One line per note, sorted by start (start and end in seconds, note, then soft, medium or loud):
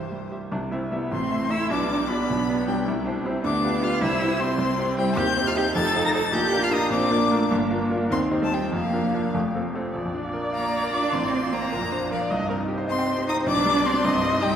0.00 0.48 C2 soft
0.00 0.55 G2 soft
0.00 0.32 E3 medium
0.00 0.20 G4 medium
0.00 0.32 G4 soft
0.00 0.30 C5 medium
0.00 0.32 E5 soft
0.12 0.44 G3 soft
0.32 0.50 G4 soft
0.32 0.50 E5 soft
0.52 0.71 C2 medium
0.52 0.71 C3 medium
0.52 0.60 D4 medium
0.71 0.89 G3 medium
0.71 0.80 C4 medium
0.71 0.89 E4 medium
0.71 0.90 E5 medium
0.91 1.09 G3 medium
0.91 1.13 B3 medium
0.91 1.10 E4 medium
0.91 1.10 E5 medium
1.11 1.31 A1 medium
1.11 1.30 A2 medium
1.11 1.71 A3 medium
1.11 1.52 C4 medium
1.11 1.52 C6 medium
1.30 1.48 A3 soft
1.30 1.49 E4 soft
1.30 1.49 E5 medium
1.51 1.68 A3 medium
1.51 1.72 E4 medium
1.51 1.68 E4 medium
1.51 1.69 E5 medium
1.51 1.70 E6 loud
1.70 1.89 B1 medium
1.70 1.89 B2 medium
1.70 2.27 G3 medium
1.70 2.11 D4 medium
1.70 2.09 D6 medium
1.91 2.08 D4 soft
1.91 2.08 G4 medium
1.91 2.08 D5 medium
2.08 2.68 B3 medium
2.08 2.28 D4 medium
2.08 2.28 G4 medium
2.08 2.66 B5 loud
2.12 2.28 D5 medium
2.28 2.48 B1 medium
2.28 2.48 B2 medium
2.28 2.87 B3 medium
2.49 2.66 D4 medium
2.49 2.66 G4 soft
2.49 2.67 D5 medium
2.67 2.86 G3 medium
2.67 2.85 D4 medium
2.67 2.86 G4 medium
2.67 2.86 D5 medium
2.67 2.86 G5 medium
2.85 3.06 C2 medium
2.85 3.06 C3 medium
2.85 3.06 E4 medium
3.05 3.25 D4 medium
3.05 3.23 E4 soft
3.05 3.24 G4 medium
3.05 3.24 C5 medium
3.24 3.43 C4 medium
3.24 3.42 E4 medium
3.24 3.43 G4 medium
3.24 3.43 C5 medium
3.43 3.63 D2 medium
3.43 3.63 D3 medium
3.43 4.03 B3 medium
3.43 3.83 D4 medium
3.43 3.85 D6 loud
3.64 3.81 F4 medium
3.64 3.81 G4 medium
3.64 3.82 B4 medium
3.82 4.03 F4 loud
3.82 4.00 F4 medium
3.82 4.00 G4 medium
3.82 4.01 B4 medium
3.82 4.03 F6 loud
4.01 4.21 C2 medium
4.01 4.21 C3 medium
4.01 5.77 C4 medium
4.01 4.42 E4 loud
4.01 4.41 E6 loud
4.20 4.37 E4 medium
4.20 4.38 G4 medium
4.20 4.38 C5 medium
4.39 4.98 C4 medium
4.39 4.57 E4 medium
4.39 4.57 G4 medium
4.39 4.58 C5 medium
4.39 4.98 C6 loud
4.58 4.78 C2 medium
4.58 4.78 C3 medium
4.78 4.96 E4 medium
4.78 4.97 G4 medium
4.78 4.97 C5 medium
4.98 5.17 G3 medium
4.98 5.16 E4 medium
4.98 5.16 G4 medium
4.98 5.16 C5 medium
4.98 5.19 G5 loud
5.17 5.36 D#2 medium
5.17 5.36 D#3 medium
5.17 5.25 G4 loud
5.17 5.49 G6 loud
5.36 5.54 D#4 medium
5.36 5.54 G4 medium
5.36 5.54 C5 medium
5.47 5.51 F4 medium
5.47 5.57 F6 loud
5.55 5.73 D#4 medium
5.55 5.74 G4 medium
5.55 5.64 G4 medium
5.55 5.74 C5 medium
5.55 5.74 G6 loud
5.75 5.94 F1 medium
5.75 5.94 F2 medium
5.75 6.32 D#4 medium
5.75 6.06 A4 medium
5.75 6.04 A6 loud
5.94 6.12 D#4 medium
5.94 6.12 F4 medium
5.94 6.12 C5 medium
6.05 6.14 A#4 medium
6.05 6.13 A#6 loud
6.13 6.31 D#4 medium
6.13 6.32 F4 medium
6.13 6.22 A4 loud
6.13 6.32 C5 medium
6.13 6.35 A6 loud
6.33 6.52 A#1 medium
6.33 6.52 A#2 medium
6.33 6.93 D4 medium
6.33 6.64 G4 loud
6.33 6.65 G6 loud
6.52 6.69 D4 medium
6.52 6.69 F4 medium
6.52 6.70 A#4 medium
6.63 6.75 F4 medium
6.63 6.74 F6 loud
6.71 6.89 D4 medium
6.71 6.92 D#4 medium
6.71 6.89 F4 medium
6.71 6.90 A#4 medium
6.71 6.90 D#6 loud
6.91 7.10 A#1 medium
6.91 7.10 A#2 medium
6.91 7.13 C4 medium
6.91 7.50 D4 medium
6.91 7.50 D6 loud
7.11 7.32 A#3 medium
7.11 7.29 D4 medium
7.11 7.29 F4 medium
7.11 7.30 A#4 medium
7.30 7.50 A3 medium
7.30 7.49 D4 medium
7.30 7.49 F4 medium
7.30 7.49 A#4 medium
7.51 7.71 G1 medium
7.51 7.71 G2 medium
7.51 8.12 A#3 medium
7.71 7.89 D4 medium
7.71 7.89 F4 medium
7.71 7.90 A#4 medium
7.91 8.09 D4 medium
7.91 8.09 F4 medium
7.91 8.09 A#4 medium
8.10 8.30 D#2 medium
8.10 8.30 D#3 medium
8.10 8.74 C4 medium
8.10 8.19 C4 medium
8.10 8.20 C6 loud
8.31 8.49 D#4 medium
8.31 8.50 G4 medium
8.31 8.50 C5 medium
8.42 8.46 A3 medium
8.42 8.55 A5 medium
8.51 8.72 G3 medium
8.51 8.70 D#4 medium
8.51 8.71 G4 medium
8.51 8.71 C5 medium
8.51 8.73 G5 medium
8.72 8.93 F1 medium
8.72 8.93 F2 medium
8.72 9.34 F3 medium
8.72 9.34 A#3 medium
8.72 9.35 F5 medium
8.93 9.12 D4 medium
8.93 9.12 F4 soft
8.93 9.12 A#4 medium
9.14 9.33 D4 medium
9.14 9.33 F4 medium
9.14 9.33 A#4 medium
9.34 9.55 F1 medium
9.34 9.55 F2 medium
9.34 9.43 A3 medium
9.54 9.63 A#3 medium
9.54 9.73 C4 soft
9.54 9.73 F4 soft
9.54 9.74 A4 medium
9.75 9.93 C4 medium
9.75 9.94 C4 medium
9.75 9.94 F4 medium
9.75 9.94 A4 medium
9.95 11.10 A#1 medium
9.95 11.74 D5 loud
10.05 10.22 F2 medium
10.15 10.31 D4 medium
10.25 10.41 F4 medium
10.34 10.50 A#4 medium
10.44 10.60 D5 medium
10.53 10.91 A#3 medium
10.53 10.70 F5 medium
10.53 10.95 A#5 medium
10.64 10.80 A#5 medium
10.73 10.90 D5 medium
10.83 11.00 A#4 medium
10.93 11.15 D4 medium
10.93 11.09 F4 medium
10.93 11.14 D6 medium
11.02 11.13 D4 medium
11.13 11.70 A1 medium
11.13 11.54 C4 medium
11.13 11.55 C6 medium
11.22 11.39 A2 medium
11.33 11.49 C4 medium
11.43 11.59 F4 medium
11.53 12.11 A#3 medium
11.53 11.68 C4 medium
11.53 12.11 A#5 loud
11.62 11.72 C5 medium
11.72 12.29 A#1 medium
11.72 11.94 A#4 medium
11.81 11.98 F2 medium
11.92 12.08 D4 medium
11.92 12.13 C5 medium
12.01 12.17 F4 medium
12.11 12.19 F3 medium
12.11 12.27 A#4 medium
12.11 12.32 D5 medium
12.11 12.31 F5 medium
12.21 12.31 D5 medium
12.31 13.44 C2 medium
12.31 12.49 D#5 loud
12.39 12.55 G2 medium
12.50 12.66 C4 medium
12.50 12.58 A#4 medium
12.59 12.75 D#4 medium
12.68 12.84 G4 medium
12.68 13.49 C5 medium
12.78 12.94 C5 medium
12.88 13.25 C4 medium
12.88 13.04 D#5 medium
12.88 13.25 C6 loud
12.98 13.14 G5 medium
13.07 13.23 C5 medium
13.18 13.34 G4 medium
13.27 13.43 D#4 medium
13.27 13.36 D#4 medium
13.27 13.36 D#6 loud
13.37 13.47 C4 medium
13.46 14.03 B1 medium
13.46 13.88 D4 loud
13.46 14.06 D5 loud
13.46 13.87 D6 loud
13.57 13.72 B2 medium
13.65 13.81 G3 medium
13.75 13.91 D4 medium
13.84 14.43 C4 medium
13.84 14.00 G4 medium
13.84 14.45 C6 loud
13.94 14.04 D4 medium
14.04 14.56 C2 medium
14.04 14.56 D#5 loud
14.15 14.30 G2 medium
14.23 14.39 G3 medium
14.33 14.48 D#4 medium
14.42 14.51 G3 loud
14.42 14.56 G4 medium
14.42 14.56 G5 loud
14.53 14.56 D#4 medium